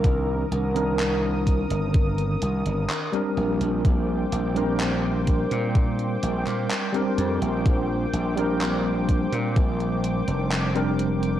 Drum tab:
HH |x-xxx-xxxxxxxxxx|x-xxx-xxxxxxxxxx|x-xxx-xxxxxxxxxx|
CP |----x-------x---|----x------xx---|----x-------x---|
BD |o-----o-o-------|o-----o-o-------|o-----o-o-------|